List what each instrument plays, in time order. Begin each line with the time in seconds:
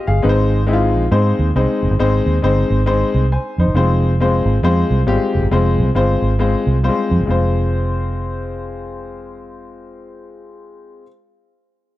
0.07 fingered electric bass G1, upright piano G#4 F5
0.22 fingered electric bass G#1, upright piano G#3 C4 D#4 B4
0.29 upright piano C5
0.67 upright piano G#3 C4 D#4 E4
0.73 upright piano F4
0.96 fingered electric bass A#1
1.11 fingered electric bass G#2, upright piano G#3 C4 D#4 C5
1.39 fingered electric bass D#2
1.56 fingered electric bass C2, upright piano G#3 C4 D#4 C5
1.82 fingered electric bass F1
1.91 fingered electric bass G1
1.99 fingered electric bass G#1, upright piano G#3 C4 D#4 C5
2.26 fingered electric bass D#2
2.42 fingered electric bass G1, upright piano G#3 C4 D#4 C5
2.70 fingered electric bass G#1
2.86 upright piano G#3 C4 D#4 C5
3.14 fingered electric bass C2
3.32 upright piano C5 G#5
3.58 fingered electric bass F2, upright piano D#4 C5
3.66 fingered electric bass G1
3.74 fingered electric bass F1, upright piano G#3 C4 F4 C5
4.20 upright piano G#3 C4 F4 C5
4.46 fingered electric bass G#1
4.63 fingered electric bass F2, upright piano G#3 C4 F4 C5
4.90 fingered electric bass C2
5.06 fingered electric bass G#1, upright piano G3 C4 F4 G4
5.12 upright piano G#3
5.35 fingered electric bass F1
5.42 fingered electric bass G1
5.51 fingered electric bass F1, upright piano G#3 C4 F4 C5
5.78 fingered electric bass C2
5.95 fingered electric bass G1, upright piano G#3 C4 F4 C5
6.22 fingered electric bass G#1
6.39 upright piano G#3 C4 F4 C5
6.67 fingered electric bass C2
6.83 upright piano G3 C4 F4 C5
6.89 upright piano G#3
7.11 fingered electric bass F2
7.19 fingered electric bass G1
7.26 fingered electric bass F1, upright piano G#3 C4 F4
7.30 upright piano C5